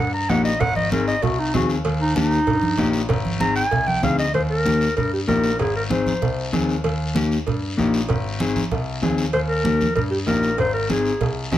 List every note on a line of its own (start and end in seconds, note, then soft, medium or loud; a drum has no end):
0.00 0.23 G2 medium
0.00 0.13 F#5 medium
0.14 0.31 A#5 medium
0.29 0.54 A#1 loud
0.29 0.51 A#3 medium
0.29 0.51 D#4 medium
0.29 0.52 G4 medium
0.29 0.43 F#5 medium
0.29 high conga medium
0.29 low timbale medium
0.29 short guiro medium
0.44 0.62 D#5 medium
0.44 short guiro medium
0.60 1.10 G#1 loud
0.60 0.75 F#5 loud
0.60 cowbell loud
0.60 high conga soft
0.60 low conga medium
0.60 long guiro medium
0.76 0.91 D#5 loud
0.76 high conga medium
0.92 1.14 C4 medium
0.92 1.14 D#4 medium
0.92 1.14 G#4 medium
0.92 1.07 A#4 medium
0.92 high conga loud
0.92 short guiro medium
1.07 1.24 D#5 medium
1.07 short guiro medium
1.22 1.48 C2 loud
1.22 1.40 F#4 medium
1.22 cowbell medium
1.22 high conga soft
1.22 low conga medium
1.22 long guiro medium
1.39 1.54 D#4 medium
1.54 1.79 D#2 loud
1.54 1.76 C4 medium
1.54 1.76 D#4 medium
1.54 1.69 F#4 medium
1.54 1.76 G#4 medium
1.54 high conga medium
1.54 low conga medium
1.54 low timbale medium
1.54 short guiro medium
1.69 short guiro medium
1.85 2.35 D#2 loud
1.85 cowbell loud
1.85 high conga soft
1.85 long guiro medium
2.01 2.15 D#4 loud
2.16 2.38 A#3 medium
2.16 3.04 D#4 loud
2.16 2.38 D#4 medium
2.16 2.38 G4 medium
2.16 high conga loud
2.16 short guiro medium
2.31 short guiro medium
2.47 2.72 G2 loud
2.47 cowbell medium
2.47 high conga soft
2.47 low conga medium
2.47 long guiro medium
2.63 high conga medium
2.78 3.04 A#1 loud
2.78 3.00 A#3 medium
2.78 3.00 D#4 medium
2.78 3.00 G4 loud
2.78 high conga medium
2.78 low timbale medium
2.78 short guiro medium
2.93 short guiro medium
3.09 3.59 G#1 loud
3.09 cowbell loud
3.09 high conga soft
3.09 low conga medium
3.09 long guiro medium
3.25 high conga medium
3.40 3.62 C4 medium
3.40 3.63 D#4 medium
3.40 3.63 G#4 medium
3.40 3.55 A#5 loud
3.40 high conga loud
3.40 short guiro medium
3.56 3.89 G#5 loud
3.56 short guiro medium
3.71 3.97 C2 loud
3.71 cowbell medium
3.71 high conga soft
3.71 low conga medium
3.71 long guiro medium
3.87 4.03 G5 loud
3.87 high conga medium
4.02 4.28 D2 loud
4.02 4.25 C4 medium
4.02 4.25 D#4 medium
4.02 4.25 G#4 medium
4.02 4.18 F5 medium
4.02 high conga medium
4.02 low conga medium
4.02 short guiro medium
4.19 4.34 D#5 medium
4.19 short guiro medium
4.34 4.84 D#2 loud
4.34 4.41 C5 loud
4.34 cowbell medium
4.34 high conga soft
4.34 long guiro medium
4.50 4.94 A#4 loud
4.65 4.87 A#3 medium
4.65 4.87 D#4 medium
4.65 4.88 G4 medium
4.65 high conga medium
4.65 short guiro medium
4.81 short guiro medium
4.97 5.22 G2 medium
4.97 5.11 A#4 medium
4.97 cowbell medium
4.97 high conga soft
4.97 low conga medium
4.97 long guiro medium
5.13 5.20 G4 medium
5.27 5.53 A#1 medium
5.27 5.50 A#3 medium
5.27 5.50 D#4 medium
5.27 5.50 G4 medium
5.27 5.57 A#4 loud
5.27 high conga medium
5.27 low timbale medium
5.27 short guiro medium
5.44 short guiro medium
5.59 6.10 G#1 loud
5.59 5.74 G#4 medium
5.59 cowbell loud
5.59 high conga soft
5.59 long guiro medium
5.76 5.83 A#4 medium
5.90 6.12 C4 medium
5.90 6.12 D#4 medium
5.90 6.12 G#4 medium
5.90 6.49 C5 medium
5.90 high conga loud
5.90 short guiro medium
6.06 high conga medium
6.06 short guiro medium
6.22 6.47 C2 medium
6.22 cowbell medium
6.22 high conga soft
6.22 low conga medium
6.22 long guiro medium
6.53 6.78 D#2 loud
6.53 6.75 C4 medium
6.53 6.75 D#4 medium
6.53 6.75 G#4 medium
6.53 high conga medium
6.53 short guiro medium
6.69 short guiro medium
6.84 7.34 D#2 loud
6.84 cowbell loud
6.84 high conga soft
6.84 long guiro medium
7.15 7.37 A#3 medium
7.15 7.37 D#4 medium
7.15 7.38 G4 medium
7.15 high conga loud
7.15 short guiro medium
7.32 short guiro medium
7.47 7.72 G2 medium
7.47 cowbell medium
7.47 high conga soft
7.47 low conga medium
7.47 long guiro medium
7.77 8.03 A#1 loud
7.77 7.99 A#3 medium
7.77 8.00 D#4 medium
7.77 8.00 G4 medium
7.77 high conga medium
7.77 short guiro medium
7.94 short guiro medium
8.09 8.59 G#1 loud
8.09 cowbell loud
8.09 high conga soft
8.09 low conga medium
8.09 long guiro medium
8.40 8.62 C4 medium
8.40 8.62 D#4 medium
8.40 8.62 G#4 medium
8.40 high conga loud
8.40 short guiro medium
8.56 high conga medium
8.56 short guiro medium
8.71 8.96 C2 medium
8.71 cowbell medium
8.71 high conga soft
8.71 low conga medium
8.71 long guiro medium
9.02 9.27 D#2 medium
9.02 9.24 C4 medium
9.02 9.24 D#4 medium
9.02 9.25 G#4 medium
9.02 high conga medium
9.02 low timbale medium
9.02 short guiro medium
9.18 short guiro medium
9.33 9.84 D#2 loud
9.33 9.40 C5 loud
9.33 cowbell loud
9.33 high conga soft
9.33 long guiro medium
9.49 9.93 A#4 loud
9.64 9.86 A#3 medium
9.64 9.87 D#4 medium
9.64 9.87 G4 medium
9.64 high conga loud
9.64 short guiro medium
9.81 high conga medium
9.81 short guiro medium
9.95 10.21 G2 medium
9.95 10.03 A#4 medium
9.95 cowbell medium
9.95 high conga soft
9.95 low conga medium
9.95 long guiro medium
10.10 10.18 G4 medium
10.26 10.53 A#1 medium
10.26 10.49 A#3 medium
10.26 10.49 D#4 medium
10.26 10.49 G4 medium
10.26 10.56 A#4 loud
10.26 high conga medium
10.26 low timbale medium
10.26 short guiro medium
10.43 short guiro medium
10.58 11.08 G#1 loud
10.58 10.73 C5 loud
10.58 cowbell loud
10.58 high conga soft
10.58 long guiro medium
10.74 10.88 A#4 medium
10.89 11.11 C4 medium
10.89 11.12 D#4 medium
10.89 11.48 G#4 medium
10.89 11.12 G#4 medium
10.89 high conga loud
10.89 short guiro medium
11.05 short guiro medium
11.21 11.46 C2 medium
11.21 cowbell medium
11.21 high conga soft
11.21 low conga medium
11.21 long guiro medium
11.52 11.58 D#2 loud
11.52 11.58 C4 medium
11.52 11.58 D#4 medium
11.52 11.58 G4 loud
11.52 high conga medium
11.52 low timbale medium
11.52 short guiro medium